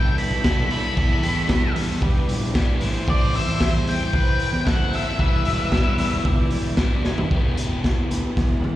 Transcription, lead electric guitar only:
Already playing: G5
0.18 B5
0.71 B5
3.10 D5
3.36 E5
3.62 E5
3.89 G5
4.67 F#5
4.95 E5

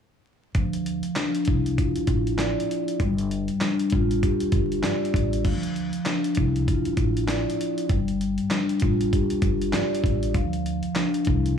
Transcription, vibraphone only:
0.55 F3
1.16 D4
1.46 E4
1.77 F4
2.38 D5
3.00 G3
3.61 D4
3.92 F4
4.23 G4
4.83 D5
5.45 F3
6.06 D4
6.36 E4
6.67 F4
7.28 D5
7.90 G3
8.51 D4
8.82 F4
9.13 G4
9.73 D5
10.35 F3
10.96 D4
11.26 E4

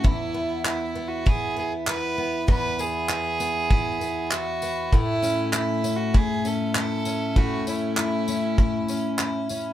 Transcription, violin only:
0.06 E4
0.67 E4
1.08 F#4
1.28 G#4
1.59 G#4
1.89 B4
2.50 B4
2.80 G#4
4.33 F#4
4.94 E4
5.55 E4
5.96 F#4
6.17 G#4
6.47 A4
6.78 A4
7.38 F#4
7.68 E4

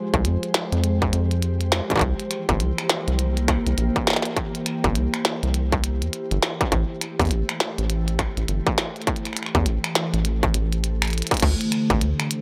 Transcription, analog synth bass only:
0.14 C2
0.25 F2
0.72 F2
1.13 F2
2.01 C2
2.49 G1
2.60 C2
3.08 C2
3.67 C2
3.78 A#1
4.84 G1
4.95 C2
5.43 C2
6.02 E2
6.31 G1
6.72 A1
7.19 E2
7.31 A1
7.78 A1
8.37 A1
8.48 G1
9.55 E2
9.66 A1
10.14 A1
10.54 A1
11.42 D2
11.90 A1
12.01 D2

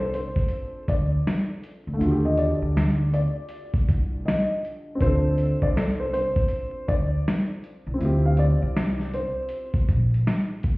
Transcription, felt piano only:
0.00 C5
0.14 C5
0.89 D5
2.25 D#5
2.38 D5
3.13 D5
4.25 D#5
5.01 C5
5.62 D5
5.76 A4
6.00 C5
6.13 C5
6.88 D5
8.26 F5
8.39 D5
9.14 C5

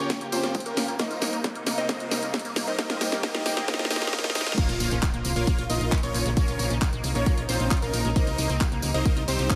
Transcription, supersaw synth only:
0.00 C#4 F4 A#4 C#5
0.32 C4 C#4 F4 C5
0.66 A#3 C#4 F4 A#4
1.00 D#4 A#4 C5 D#5
1.78 D#4 A#4 C5 D#5
1.89 D#4
2.67 D#4 A#4 C5 D#5
2.79 D#4 A#4 C5 D#5
3.23 D#4 A#4 C5 D#5
3.68 D#4 A#4 C5 D#5
3.91 D#4 A#4 C5 D#5
4.13 D#4 A#4 C5 D#5
4.35 D#4 A#4 C5 D#5
4.58 F4 A#4 C#5 F5
5.36 F4 A#4 C#5 F5
5.70 D#4 F4 A#4 D#5
6.03 C#4 F4 A#4 C#5
6.37 C#4 F4 A#4 C#5
7.15 C#4 F4 A#4 C#5
7.49 C4 C#4 F4 C5
7.82 A#3 C#4 F4 A#4
8.16 D#4 A#4 C5 D#5
8.94 D#4 A#4 C5 D#5
9.28 C4 D#4 G4 C5

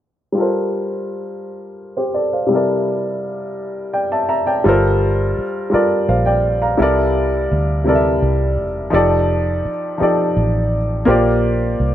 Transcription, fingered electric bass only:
4.66 G1
5.39 muted fingered electric bass stroke
5.74 muted fingered electric bass stroke
6.09 A#1
6.80 C2
7.52 D2
8.22 C2
8.58 E1
8.94 F1
9.65 muted fingered electric bass stroke
10.02 muted fingered electric bass stroke
10.37 A1
11.08 A#1
11.80 C2

